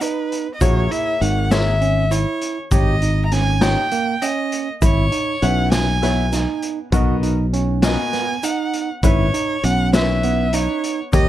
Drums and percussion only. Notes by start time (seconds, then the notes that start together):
0.01 closed hi-hat, shaker
0.32 closed hi-hat
0.61 kick, closed hi-hat, shaker
0.91 closed hi-hat
1.22 closed hi-hat
1.51 snare, closed hi-hat, shaker
1.81 closed hi-hat
2.11 closed hi-hat, shaker
2.41 closed hi-hat
2.71 kick, closed hi-hat, shaker
3.02 closed hi-hat
3.31 snare, closed hi-hat
3.61 snare, closed hi-hat, shaker
3.91 closed hi-hat
4.22 closed hi-hat, shaker
4.52 closed hi-hat
4.82 kick, closed hi-hat, shaker
5.12 closed hi-hat
5.42 closed hi-hat, shaker
5.72 snare, closed hi-hat, shaker
6.02 snare, closed hi-hat
6.32 snare, closed hi-hat, shaker
6.62 closed hi-hat, shaker
6.92 kick, closed hi-hat, shaker
7.23 closed hi-hat
7.53 closed hi-hat
7.82 snare, closed hi-hat, shaker
8.13 snare, closed hi-hat
8.43 closed hi-hat, shaker
8.73 closed hi-hat
9.03 kick, closed hi-hat, shaker
9.34 closed hi-hat
9.63 closed hi-hat
9.93 snare, closed hi-hat, shaker
10.23 closed hi-hat
10.53 closed hi-hat, shaker
10.84 closed hi-hat
11.13 kick, closed hi-hat, shaker